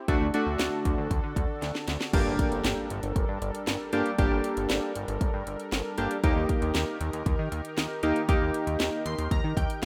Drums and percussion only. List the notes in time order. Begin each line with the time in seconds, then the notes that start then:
0.08 kick, closed hi-hat
0.34 closed hi-hat
0.59 snare, closed hi-hat
0.85 kick, closed hi-hat
1.11 kick, closed hi-hat
1.36 kick, closed hi-hat
1.62 snare, closed hi-hat
1.75 snare
1.88 snare, closed hi-hat
2.01 snare
2.13 kick, closed hi-hat, crash
2.39 kick, closed hi-hat
2.52 closed hi-hat
2.65 snare, closed hi-hat
2.90 closed hi-hat
3.03 closed hi-hat
3.16 kick, closed hi-hat
3.42 closed hi-hat
3.55 closed hi-hat
3.67 snare, closed hi-hat
3.93 closed hi-hat
4.06 closed hi-hat
4.18 kick, closed hi-hat
4.44 closed hi-hat
4.57 closed hi-hat
4.70 snare, closed hi-hat
4.96 closed hi-hat
5.08 closed hi-hat
5.21 kick, closed hi-hat
5.47 closed hi-hat
5.60 closed hi-hat
5.72 snare, closed hi-hat
5.98 closed hi-hat
6.11 closed hi-hat
6.24 kick, closed hi-hat
6.49 kick, closed hi-hat
6.62 closed hi-hat
6.75 snare, closed hi-hat
7.01 closed hi-hat
7.13 closed hi-hat
7.26 kick, closed hi-hat
7.52 closed hi-hat
7.65 closed hi-hat
7.78 snare, closed hi-hat
8.03 closed hi-hat
8.16 closed hi-hat
8.29 kick, closed hi-hat
8.54 closed hi-hat
8.67 closed hi-hat
8.80 snare, closed hi-hat
9.06 closed hi-hat
9.18 closed hi-hat
9.31 kick, closed hi-hat
9.57 kick, closed hi-hat
9.70 closed hi-hat